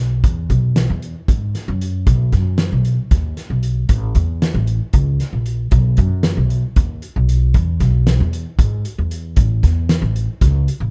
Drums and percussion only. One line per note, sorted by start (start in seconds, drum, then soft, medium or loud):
0.24 kick loud
0.24 closed hi-hat medium
0.50 kick medium
0.50 closed hi-hat medium
0.76 snare loud
0.76 closed hi-hat medium
1.02 closed hi-hat medium
1.28 kick medium
1.28 closed hi-hat medium
1.55 snare soft
1.55 closed hi-hat medium
1.81 closed hi-hat medium
2.07 kick loud
2.07 closed hi-hat medium
2.32 kick medium
2.32 snare soft
2.32 closed hi-hat medium
2.58 snare loud
2.58 closed hi-hat medium
2.85 closed hi-hat medium
3.11 kick loud
3.11 snare soft
3.11 closed hi-hat medium
3.37 snare soft
3.37 closed hi-hat medium
3.63 closed hi-hat medium
3.89 kick loud
3.89 closed hi-hat medium
4.15 kick medium
4.15 closed hi-hat medium
4.42 snare medium
4.42 closed hi-hat medium
4.67 closed hi-hat medium
4.93 kick loud
4.93 closed hi-hat medium
5.20 snare soft
5.20 closed hi-hat medium
5.46 closed hi-hat medium
5.71 kick loud
5.71 closed hi-hat medium
5.97 kick medium
5.97 closed hi-hat medium
6.23 snare loud
6.23 closed hi-hat medium
6.50 closed hi-hat medium
6.76 kick loud
6.76 closed hi-hat medium
7.02 closed hi-hat medium
7.29 closed hi-hat medium
7.54 kick loud
7.54 closed hi-hat medium
7.80 kick medium
7.80 snare soft
7.80 closed hi-hat medium
8.07 snare loud
8.07 closed hi-hat medium
8.33 closed hi-hat medium
8.59 kick loud
8.59 closed hi-hat medium
8.85 closed hi-hat medium
9.11 closed hi-hat medium
9.36 kick loud
9.36 closed hi-hat medium
9.63 kick medium
9.63 snare soft
9.63 closed hi-hat medium
9.89 snare loud
9.89 closed hi-hat medium
10.16 closed hi-hat medium
10.41 kick loud
10.41 snare soft
10.41 closed hi-hat medium
10.68 closed hi-hat medium